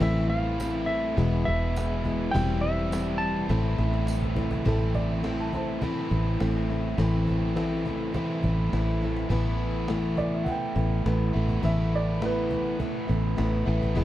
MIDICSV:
0, 0, Header, 1, 8, 480
1, 0, Start_track
1, 0, Tempo, 581395
1, 10, Time_signature, 4, 2, 24, 8
1, 11591, End_track
2, 0, Start_track
2, 0, Title_t, "Electric slide guitar"
2, 0, Program_c, 0, 29
2, 23, Note_on_c, 0, 76, 80
2, 242, Note_off_c, 0, 76, 0
2, 245, Note_on_c, 0, 77, 88
2, 694, Note_off_c, 0, 77, 0
2, 712, Note_on_c, 0, 76, 80
2, 1190, Note_off_c, 0, 76, 0
2, 1200, Note_on_c, 0, 76, 96
2, 1911, Note_on_c, 0, 79, 102
2, 1945, Note_off_c, 0, 76, 0
2, 2157, Note_on_c, 0, 76, 95
2, 2166, Note_off_c, 0, 79, 0
2, 2625, Note_on_c, 0, 81, 96
2, 2656, Note_off_c, 0, 76, 0
2, 3562, Note_off_c, 0, 81, 0
2, 11591, End_track
3, 0, Start_track
3, 0, Title_t, "Upright piano"
3, 0, Program_c, 1, 0
3, 3861, Note_on_c, 1, 69, 96
3, 4086, Note_off_c, 1, 69, 0
3, 4086, Note_on_c, 1, 74, 84
3, 4197, Note_off_c, 1, 74, 0
3, 4214, Note_on_c, 1, 76, 70
3, 4442, Note_off_c, 1, 76, 0
3, 4460, Note_on_c, 1, 81, 79
3, 4564, Note_off_c, 1, 81, 0
3, 4576, Note_on_c, 1, 72, 68
3, 4583, Note_on_c, 1, 81, 75
3, 5497, Note_off_c, 1, 72, 0
3, 5505, Note_off_c, 1, 81, 0
3, 8405, Note_on_c, 1, 74, 83
3, 8517, Note_off_c, 1, 74, 0
3, 8539, Note_on_c, 1, 76, 67
3, 8620, Note_on_c, 1, 78, 70
3, 8645, Note_off_c, 1, 76, 0
3, 8648, Note_off_c, 1, 78, 0
3, 8658, Note_on_c, 1, 79, 84
3, 9584, Note_off_c, 1, 79, 0
3, 9615, Note_on_c, 1, 76, 92
3, 9844, Note_off_c, 1, 76, 0
3, 9870, Note_on_c, 1, 74, 81
3, 10092, Note_off_c, 1, 74, 0
3, 10117, Note_on_c, 1, 71, 87
3, 11510, Note_off_c, 1, 71, 0
3, 11591, End_track
4, 0, Start_track
4, 0, Title_t, "Steel-string acoustic guitar"
4, 0, Program_c, 2, 25
4, 1, Note_on_c, 2, 45, 81
4, 3, Note_on_c, 2, 52, 108
4, 4, Note_on_c, 2, 60, 97
4, 5, Note_on_c, 2, 57, 100
4, 13, Note_on_c, 2, 64, 106
4, 225, Note_off_c, 2, 64, 0
4, 235, Note_off_c, 2, 60, 0
4, 235, Note_on_c, 2, 64, 55
4, 239, Note_off_c, 2, 57, 0
4, 245, Note_on_c, 2, 60, 49
4, 246, Note_off_c, 2, 45, 0
4, 246, Note_off_c, 2, 52, 0
4, 249, Note_on_c, 2, 57, 44
4, 473, Note_off_c, 2, 57, 0
4, 481, Note_on_c, 2, 52, 63
4, 482, Note_off_c, 2, 64, 0
4, 482, Note_on_c, 2, 57, 72
4, 484, Note_off_c, 2, 60, 0
4, 494, Note_on_c, 2, 60, 69
4, 496, Note_on_c, 2, 64, 69
4, 711, Note_off_c, 2, 64, 0
4, 720, Note_off_c, 2, 60, 0
4, 721, Note_on_c, 2, 64, 54
4, 725, Note_off_c, 2, 52, 0
4, 726, Note_off_c, 2, 57, 0
4, 730, Note_on_c, 2, 60, 50
4, 736, Note_on_c, 2, 57, 45
4, 965, Note_off_c, 2, 64, 0
4, 967, Note_on_c, 2, 40, 80
4, 968, Note_on_c, 2, 47, 91
4, 969, Note_off_c, 2, 57, 0
4, 969, Note_off_c, 2, 60, 0
4, 969, Note_on_c, 2, 52, 87
4, 973, Note_on_c, 2, 56, 104
4, 978, Note_on_c, 2, 59, 83
4, 979, Note_on_c, 2, 64, 94
4, 1195, Note_off_c, 2, 64, 0
4, 1198, Note_off_c, 2, 59, 0
4, 1203, Note_off_c, 2, 56, 0
4, 1205, Note_off_c, 2, 52, 0
4, 1205, Note_on_c, 2, 64, 57
4, 1208, Note_off_c, 2, 40, 0
4, 1208, Note_off_c, 2, 47, 0
4, 1208, Note_on_c, 2, 59, 40
4, 1213, Note_on_c, 2, 56, 45
4, 1215, Note_on_c, 2, 52, 38
4, 1679, Note_off_c, 2, 64, 0
4, 1682, Note_on_c, 2, 64, 52
4, 1683, Note_off_c, 2, 59, 0
4, 1688, Note_off_c, 2, 56, 0
4, 1692, Note_on_c, 2, 59, 48
4, 1696, Note_off_c, 2, 52, 0
4, 1698, Note_on_c, 2, 56, 45
4, 1699, Note_on_c, 2, 52, 42
4, 1922, Note_off_c, 2, 52, 0
4, 1925, Note_off_c, 2, 64, 0
4, 1930, Note_off_c, 2, 59, 0
4, 1932, Note_on_c, 2, 52, 99
4, 1933, Note_off_c, 2, 56, 0
4, 1939, Note_on_c, 2, 55, 91
4, 1940, Note_on_c, 2, 64, 93
4, 1943, Note_on_c, 2, 60, 109
4, 2162, Note_off_c, 2, 64, 0
4, 2169, Note_off_c, 2, 52, 0
4, 2171, Note_off_c, 2, 60, 0
4, 2172, Note_on_c, 2, 64, 56
4, 2173, Note_off_c, 2, 55, 0
4, 2180, Note_on_c, 2, 60, 45
4, 2189, Note_on_c, 2, 55, 45
4, 2395, Note_off_c, 2, 55, 0
4, 2401, Note_off_c, 2, 60, 0
4, 2403, Note_on_c, 2, 52, 63
4, 2405, Note_on_c, 2, 55, 69
4, 2409, Note_off_c, 2, 64, 0
4, 2411, Note_on_c, 2, 60, 62
4, 2417, Note_on_c, 2, 64, 63
4, 2876, Note_off_c, 2, 52, 0
4, 2883, Note_off_c, 2, 55, 0
4, 2884, Note_off_c, 2, 60, 0
4, 2884, Note_off_c, 2, 64, 0
4, 2884, Note_on_c, 2, 45, 76
4, 2886, Note_on_c, 2, 52, 74
4, 2887, Note_on_c, 2, 57, 92
4, 2894, Note_on_c, 2, 60, 86
4, 2894, Note_on_c, 2, 64, 90
4, 3114, Note_off_c, 2, 64, 0
4, 3124, Note_off_c, 2, 60, 0
4, 3124, Note_on_c, 2, 64, 54
4, 3125, Note_off_c, 2, 45, 0
4, 3126, Note_off_c, 2, 52, 0
4, 3126, Note_off_c, 2, 57, 0
4, 3134, Note_on_c, 2, 60, 49
4, 3137, Note_on_c, 2, 57, 38
4, 3587, Note_off_c, 2, 64, 0
4, 3595, Note_off_c, 2, 60, 0
4, 3597, Note_on_c, 2, 64, 55
4, 3601, Note_off_c, 2, 57, 0
4, 3605, Note_on_c, 2, 60, 53
4, 3611, Note_on_c, 2, 57, 48
4, 3836, Note_off_c, 2, 57, 0
4, 3836, Note_off_c, 2, 60, 0
4, 3840, Note_on_c, 2, 45, 94
4, 3841, Note_off_c, 2, 64, 0
4, 3844, Note_on_c, 2, 52, 92
4, 3846, Note_on_c, 2, 57, 98
4, 3846, Note_on_c, 2, 60, 111
4, 3851, Note_on_c, 2, 64, 114
4, 4309, Note_off_c, 2, 45, 0
4, 4317, Note_off_c, 2, 52, 0
4, 4319, Note_off_c, 2, 60, 0
4, 4319, Note_on_c, 2, 45, 99
4, 4320, Note_on_c, 2, 52, 96
4, 4321, Note_off_c, 2, 57, 0
4, 4323, Note_off_c, 2, 64, 0
4, 4325, Note_on_c, 2, 57, 86
4, 4327, Note_on_c, 2, 64, 93
4, 4329, Note_on_c, 2, 60, 100
4, 4557, Note_off_c, 2, 64, 0
4, 4562, Note_off_c, 2, 45, 0
4, 4562, Note_off_c, 2, 52, 0
4, 4564, Note_off_c, 2, 60, 0
4, 4565, Note_off_c, 2, 57, 0
4, 4567, Note_on_c, 2, 64, 60
4, 4574, Note_on_c, 2, 60, 61
4, 4585, Note_on_c, 2, 57, 52
4, 4798, Note_off_c, 2, 57, 0
4, 4805, Note_on_c, 2, 52, 66
4, 4806, Note_off_c, 2, 60, 0
4, 4806, Note_off_c, 2, 64, 0
4, 4808, Note_on_c, 2, 57, 71
4, 4816, Note_on_c, 2, 60, 73
4, 4818, Note_on_c, 2, 64, 73
4, 5283, Note_off_c, 2, 60, 0
4, 5287, Note_off_c, 2, 52, 0
4, 5287, Note_on_c, 2, 45, 74
4, 5289, Note_off_c, 2, 57, 0
4, 5290, Note_on_c, 2, 52, 76
4, 5292, Note_on_c, 2, 57, 79
4, 5293, Note_on_c, 2, 60, 97
4, 5294, Note_off_c, 2, 64, 0
4, 5297, Note_on_c, 2, 64, 90
4, 5520, Note_off_c, 2, 64, 0
4, 5526, Note_off_c, 2, 45, 0
4, 5528, Note_off_c, 2, 52, 0
4, 5528, Note_off_c, 2, 57, 0
4, 5529, Note_off_c, 2, 60, 0
4, 5529, Note_on_c, 2, 64, 63
4, 5538, Note_on_c, 2, 60, 54
4, 5542, Note_on_c, 2, 57, 52
4, 5763, Note_off_c, 2, 60, 0
4, 5765, Note_off_c, 2, 57, 0
4, 5765, Note_off_c, 2, 64, 0
4, 5766, Note_on_c, 2, 45, 91
4, 5771, Note_on_c, 2, 52, 95
4, 5773, Note_on_c, 2, 60, 108
4, 5775, Note_on_c, 2, 57, 94
4, 5775, Note_on_c, 2, 64, 96
4, 6227, Note_off_c, 2, 45, 0
4, 6231, Note_off_c, 2, 52, 0
4, 6233, Note_off_c, 2, 60, 0
4, 6236, Note_off_c, 2, 57, 0
4, 6237, Note_on_c, 2, 45, 90
4, 6238, Note_off_c, 2, 64, 0
4, 6241, Note_on_c, 2, 52, 85
4, 6243, Note_on_c, 2, 60, 92
4, 6246, Note_on_c, 2, 57, 90
4, 6248, Note_on_c, 2, 64, 91
4, 6474, Note_off_c, 2, 64, 0
4, 6480, Note_off_c, 2, 60, 0
4, 6481, Note_off_c, 2, 45, 0
4, 6483, Note_off_c, 2, 52, 0
4, 6484, Note_on_c, 2, 64, 53
4, 6486, Note_off_c, 2, 57, 0
4, 6490, Note_on_c, 2, 60, 57
4, 6498, Note_on_c, 2, 57, 52
4, 6720, Note_off_c, 2, 57, 0
4, 6722, Note_off_c, 2, 60, 0
4, 6722, Note_on_c, 2, 52, 59
4, 6725, Note_off_c, 2, 64, 0
4, 6730, Note_on_c, 2, 57, 61
4, 6732, Note_on_c, 2, 60, 71
4, 6738, Note_on_c, 2, 64, 76
4, 7196, Note_off_c, 2, 52, 0
4, 7201, Note_off_c, 2, 57, 0
4, 7201, Note_off_c, 2, 60, 0
4, 7203, Note_off_c, 2, 64, 0
4, 7203, Note_on_c, 2, 45, 86
4, 7206, Note_on_c, 2, 52, 74
4, 7211, Note_on_c, 2, 57, 79
4, 7211, Note_on_c, 2, 60, 78
4, 7213, Note_on_c, 2, 64, 80
4, 7443, Note_off_c, 2, 64, 0
4, 7444, Note_off_c, 2, 45, 0
4, 7446, Note_off_c, 2, 52, 0
4, 7449, Note_off_c, 2, 57, 0
4, 7449, Note_off_c, 2, 60, 0
4, 7453, Note_on_c, 2, 64, 58
4, 7459, Note_on_c, 2, 60, 52
4, 7469, Note_on_c, 2, 57, 52
4, 7675, Note_off_c, 2, 57, 0
4, 7679, Note_off_c, 2, 64, 0
4, 7679, Note_on_c, 2, 45, 97
4, 7683, Note_off_c, 2, 60, 0
4, 7683, Note_on_c, 2, 52, 85
4, 7685, Note_on_c, 2, 57, 94
4, 7686, Note_on_c, 2, 59, 112
4, 7689, Note_on_c, 2, 64, 106
4, 8158, Note_off_c, 2, 45, 0
4, 8162, Note_off_c, 2, 57, 0
4, 8165, Note_off_c, 2, 52, 0
4, 8168, Note_on_c, 2, 45, 86
4, 8168, Note_on_c, 2, 52, 89
4, 8172, Note_on_c, 2, 57, 93
4, 8175, Note_off_c, 2, 64, 0
4, 8176, Note_off_c, 2, 59, 0
4, 8178, Note_on_c, 2, 64, 102
4, 8179, Note_on_c, 2, 59, 96
4, 8645, Note_off_c, 2, 57, 0
4, 8647, Note_off_c, 2, 45, 0
4, 8648, Note_off_c, 2, 52, 0
4, 8651, Note_on_c, 2, 52, 58
4, 8654, Note_on_c, 2, 57, 62
4, 8658, Note_off_c, 2, 59, 0
4, 8661, Note_off_c, 2, 64, 0
4, 8661, Note_on_c, 2, 59, 67
4, 8664, Note_on_c, 2, 64, 65
4, 8875, Note_off_c, 2, 64, 0
4, 8882, Note_off_c, 2, 59, 0
4, 8885, Note_on_c, 2, 64, 50
4, 8888, Note_off_c, 2, 57, 0
4, 8889, Note_off_c, 2, 52, 0
4, 8892, Note_on_c, 2, 59, 50
4, 8898, Note_on_c, 2, 57, 43
4, 9125, Note_off_c, 2, 57, 0
4, 9126, Note_off_c, 2, 64, 0
4, 9129, Note_off_c, 2, 59, 0
4, 9131, Note_on_c, 2, 45, 69
4, 9135, Note_on_c, 2, 57, 73
4, 9136, Note_on_c, 2, 52, 66
4, 9138, Note_on_c, 2, 59, 79
4, 9143, Note_on_c, 2, 64, 65
4, 9353, Note_off_c, 2, 64, 0
4, 9360, Note_off_c, 2, 59, 0
4, 9363, Note_on_c, 2, 64, 58
4, 9369, Note_off_c, 2, 45, 0
4, 9370, Note_on_c, 2, 59, 55
4, 9371, Note_off_c, 2, 57, 0
4, 9372, Note_off_c, 2, 52, 0
4, 9380, Note_on_c, 2, 57, 53
4, 9596, Note_off_c, 2, 57, 0
4, 9598, Note_off_c, 2, 59, 0
4, 9600, Note_off_c, 2, 64, 0
4, 9600, Note_on_c, 2, 45, 90
4, 9606, Note_on_c, 2, 52, 93
4, 9606, Note_on_c, 2, 57, 95
4, 9608, Note_on_c, 2, 59, 103
4, 9609, Note_on_c, 2, 64, 93
4, 10072, Note_off_c, 2, 45, 0
4, 10080, Note_off_c, 2, 52, 0
4, 10080, Note_off_c, 2, 57, 0
4, 10082, Note_on_c, 2, 45, 75
4, 10084, Note_on_c, 2, 52, 85
4, 10089, Note_off_c, 2, 59, 0
4, 10090, Note_off_c, 2, 64, 0
4, 10090, Note_on_c, 2, 57, 80
4, 10092, Note_on_c, 2, 59, 97
4, 10094, Note_on_c, 2, 64, 85
4, 10553, Note_off_c, 2, 57, 0
4, 10556, Note_off_c, 2, 52, 0
4, 10559, Note_on_c, 2, 52, 57
4, 10563, Note_on_c, 2, 57, 59
4, 10564, Note_off_c, 2, 59, 0
4, 10565, Note_off_c, 2, 45, 0
4, 10567, Note_on_c, 2, 59, 64
4, 10573, Note_off_c, 2, 64, 0
4, 10576, Note_on_c, 2, 64, 73
4, 10784, Note_off_c, 2, 64, 0
4, 10793, Note_off_c, 2, 59, 0
4, 10794, Note_on_c, 2, 64, 57
4, 10801, Note_off_c, 2, 57, 0
4, 10803, Note_off_c, 2, 52, 0
4, 10803, Note_on_c, 2, 59, 51
4, 10811, Note_on_c, 2, 57, 48
4, 11028, Note_off_c, 2, 57, 0
4, 11031, Note_on_c, 2, 45, 73
4, 11035, Note_off_c, 2, 59, 0
4, 11035, Note_on_c, 2, 52, 80
4, 11036, Note_off_c, 2, 64, 0
4, 11038, Note_on_c, 2, 57, 88
4, 11045, Note_on_c, 2, 59, 99
4, 11046, Note_on_c, 2, 64, 82
4, 11268, Note_off_c, 2, 64, 0
4, 11275, Note_off_c, 2, 59, 0
4, 11278, Note_on_c, 2, 64, 63
4, 11279, Note_off_c, 2, 45, 0
4, 11280, Note_off_c, 2, 57, 0
4, 11281, Note_off_c, 2, 52, 0
4, 11285, Note_on_c, 2, 59, 62
4, 11290, Note_on_c, 2, 57, 55
4, 11518, Note_off_c, 2, 57, 0
4, 11518, Note_on_c, 2, 47, 105
4, 11519, Note_off_c, 2, 59, 0
4, 11520, Note_off_c, 2, 64, 0
4, 11520, Note_on_c, 2, 40, 97
4, 11522, Note_on_c, 2, 56, 108
4, 11523, Note_on_c, 2, 52, 97
4, 11529, Note_on_c, 2, 59, 102
4, 11530, Note_on_c, 2, 64, 108
4, 11591, Note_off_c, 2, 40, 0
4, 11591, Note_off_c, 2, 47, 0
4, 11591, Note_off_c, 2, 52, 0
4, 11591, Note_off_c, 2, 56, 0
4, 11591, Note_off_c, 2, 59, 0
4, 11591, Note_off_c, 2, 64, 0
4, 11591, End_track
5, 0, Start_track
5, 0, Title_t, "Overdriven electric guitar"
5, 0, Program_c, 3, 29
5, 4797, Note_on_c, 3, 45, 78
5, 5755, Note_off_c, 3, 45, 0
5, 6717, Note_on_c, 3, 45, 74
5, 7660, Note_off_c, 3, 45, 0
5, 9369, Note_on_c, 3, 52, 57
5, 9374, Note_on_c, 3, 45, 54
5, 9580, Note_off_c, 3, 45, 0
5, 9592, Note_off_c, 3, 52, 0
5, 11288, Note_on_c, 3, 52, 64
5, 11296, Note_on_c, 3, 45, 63
5, 11517, Note_off_c, 3, 45, 0
5, 11524, Note_off_c, 3, 52, 0
5, 11591, End_track
6, 0, Start_track
6, 0, Title_t, "Fingered electric bass"
6, 0, Program_c, 4, 33
6, 11, Note_on_c, 4, 33, 106
6, 937, Note_off_c, 4, 33, 0
6, 972, Note_on_c, 4, 28, 101
6, 1191, Note_off_c, 4, 28, 0
6, 1221, Note_on_c, 4, 28, 92
6, 1901, Note_off_c, 4, 28, 0
6, 1937, Note_on_c, 4, 28, 110
6, 2858, Note_off_c, 4, 28, 0
6, 2886, Note_on_c, 4, 33, 92
6, 3107, Note_off_c, 4, 33, 0
6, 3127, Note_on_c, 4, 33, 90
6, 3813, Note_off_c, 4, 33, 0
6, 3845, Note_on_c, 4, 33, 85
6, 4772, Note_off_c, 4, 33, 0
6, 5045, Note_on_c, 4, 33, 97
6, 5266, Note_off_c, 4, 33, 0
6, 5294, Note_on_c, 4, 33, 79
6, 5737, Note_off_c, 4, 33, 0
6, 5764, Note_on_c, 4, 33, 96
6, 6692, Note_off_c, 4, 33, 0
6, 6967, Note_on_c, 4, 33, 94
6, 7187, Note_off_c, 4, 33, 0
6, 7205, Note_on_c, 4, 33, 81
6, 7652, Note_off_c, 4, 33, 0
6, 7678, Note_on_c, 4, 33, 86
6, 8609, Note_off_c, 4, 33, 0
6, 8881, Note_on_c, 4, 33, 90
6, 9105, Note_off_c, 4, 33, 0
6, 9129, Note_on_c, 4, 33, 85
6, 9349, Note_off_c, 4, 33, 0
6, 9375, Note_on_c, 4, 33, 85
6, 9592, Note_off_c, 4, 33, 0
6, 9604, Note_on_c, 4, 33, 80
6, 10533, Note_off_c, 4, 33, 0
6, 10809, Note_on_c, 4, 33, 87
6, 11029, Note_off_c, 4, 33, 0
6, 11055, Note_on_c, 4, 33, 92
6, 11273, Note_off_c, 4, 33, 0
6, 11289, Note_on_c, 4, 33, 93
6, 11509, Note_off_c, 4, 33, 0
6, 11533, Note_on_c, 4, 28, 95
6, 11591, Note_off_c, 4, 28, 0
6, 11591, End_track
7, 0, Start_track
7, 0, Title_t, "Cajon"
7, 12, Note_on_c, 9, 36, 111
7, 95, Note_off_c, 9, 36, 0
7, 501, Note_on_c, 9, 38, 109
7, 583, Note_off_c, 9, 38, 0
7, 974, Note_on_c, 9, 36, 83
7, 975, Note_on_c, 9, 38, 51
7, 1057, Note_off_c, 9, 36, 0
7, 1058, Note_off_c, 9, 38, 0
7, 1464, Note_on_c, 9, 38, 117
7, 1547, Note_off_c, 9, 38, 0
7, 1692, Note_on_c, 9, 36, 74
7, 1775, Note_off_c, 9, 36, 0
7, 1933, Note_on_c, 9, 36, 108
7, 2016, Note_off_c, 9, 36, 0
7, 2419, Note_on_c, 9, 38, 120
7, 2501, Note_off_c, 9, 38, 0
7, 2886, Note_on_c, 9, 36, 89
7, 2890, Note_on_c, 9, 38, 58
7, 2896, Note_off_c, 9, 38, 0
7, 2896, Note_on_c, 9, 38, 65
7, 2968, Note_off_c, 9, 36, 0
7, 2979, Note_off_c, 9, 38, 0
7, 3011, Note_on_c, 9, 38, 55
7, 3093, Note_off_c, 9, 38, 0
7, 3123, Note_on_c, 9, 38, 81
7, 3206, Note_off_c, 9, 38, 0
7, 3249, Note_on_c, 9, 38, 77
7, 3331, Note_off_c, 9, 38, 0
7, 3361, Note_on_c, 9, 38, 96
7, 3443, Note_off_c, 9, 38, 0
7, 3483, Note_on_c, 9, 36, 81
7, 3566, Note_off_c, 9, 36, 0
7, 3602, Note_on_c, 9, 36, 98
7, 3684, Note_off_c, 9, 36, 0
7, 3722, Note_on_c, 9, 36, 96
7, 3805, Note_off_c, 9, 36, 0
7, 3842, Note_on_c, 9, 36, 107
7, 3924, Note_off_c, 9, 36, 0
7, 4082, Note_on_c, 9, 36, 87
7, 4165, Note_off_c, 9, 36, 0
7, 4326, Note_on_c, 9, 38, 110
7, 4408, Note_off_c, 9, 38, 0
7, 4563, Note_on_c, 9, 36, 70
7, 4646, Note_off_c, 9, 36, 0
7, 4802, Note_on_c, 9, 36, 117
7, 4885, Note_off_c, 9, 36, 0
7, 5043, Note_on_c, 9, 36, 85
7, 5126, Note_off_c, 9, 36, 0
7, 5287, Note_on_c, 9, 38, 119
7, 5369, Note_off_c, 9, 38, 0
7, 5764, Note_on_c, 9, 36, 111
7, 5846, Note_off_c, 9, 36, 0
7, 6004, Note_on_c, 9, 36, 83
7, 6086, Note_off_c, 9, 36, 0
7, 6248, Note_on_c, 9, 38, 112
7, 6331, Note_off_c, 9, 38, 0
7, 6484, Note_on_c, 9, 36, 73
7, 6567, Note_off_c, 9, 36, 0
7, 6723, Note_on_c, 9, 36, 116
7, 6806, Note_off_c, 9, 36, 0
7, 6961, Note_on_c, 9, 36, 90
7, 7044, Note_off_c, 9, 36, 0
7, 7208, Note_on_c, 9, 38, 108
7, 7291, Note_off_c, 9, 38, 0
7, 7446, Note_on_c, 9, 38, 59
7, 7528, Note_off_c, 9, 38, 0
7, 7567, Note_on_c, 9, 38, 74
7, 7650, Note_off_c, 9, 38, 0
7, 7679, Note_on_c, 9, 36, 107
7, 7761, Note_off_c, 9, 36, 0
7, 8159, Note_on_c, 9, 38, 114
7, 8241, Note_off_c, 9, 38, 0
7, 8397, Note_on_c, 9, 36, 81
7, 8479, Note_off_c, 9, 36, 0
7, 8638, Note_on_c, 9, 36, 102
7, 8721, Note_off_c, 9, 36, 0
7, 8880, Note_on_c, 9, 36, 83
7, 8963, Note_off_c, 9, 36, 0
7, 9131, Note_on_c, 9, 38, 117
7, 9213, Note_off_c, 9, 38, 0
7, 9482, Note_on_c, 9, 36, 81
7, 9565, Note_off_c, 9, 36, 0
7, 9602, Note_on_c, 9, 36, 96
7, 9685, Note_off_c, 9, 36, 0
7, 10088, Note_on_c, 9, 38, 109
7, 10170, Note_off_c, 9, 38, 0
7, 10326, Note_on_c, 9, 36, 82
7, 10408, Note_off_c, 9, 36, 0
7, 10566, Note_on_c, 9, 36, 106
7, 10649, Note_off_c, 9, 36, 0
7, 10807, Note_on_c, 9, 36, 81
7, 10890, Note_off_c, 9, 36, 0
7, 11048, Note_on_c, 9, 38, 117
7, 11131, Note_off_c, 9, 38, 0
7, 11407, Note_on_c, 9, 36, 86
7, 11489, Note_off_c, 9, 36, 0
7, 11530, Note_on_c, 9, 36, 95
7, 11591, Note_off_c, 9, 36, 0
7, 11591, End_track
8, 0, Start_track
8, 0, Title_t, "Drums"
8, 494, Note_on_c, 9, 54, 111
8, 577, Note_off_c, 9, 54, 0
8, 1456, Note_on_c, 9, 54, 103
8, 1539, Note_off_c, 9, 54, 0
8, 2413, Note_on_c, 9, 54, 94
8, 2495, Note_off_c, 9, 54, 0
8, 3369, Note_on_c, 9, 54, 96
8, 3452, Note_off_c, 9, 54, 0
8, 11591, End_track
0, 0, End_of_file